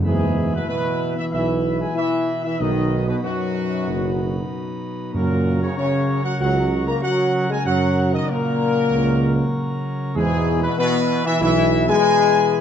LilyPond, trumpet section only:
\new Staff \with { instrumentName = "Trumpet section" } { \time 4/4 \key e \lydian \tempo 4 = 96 gis'8. b'16 b'8. e''16 e''8. gis''16 e''8. e''16 | dis''8. b'16 fis'2~ fis'8 r8 | ais'8. cis''16 cis''8. fis''16 fis''8. ais''16 fis''8. gis''16 | fis''8. dis''16 ais'2~ ais'8 r8 |
gis'8. b'16 b'8. e''16 e''8. gis''4~ gis''16 | }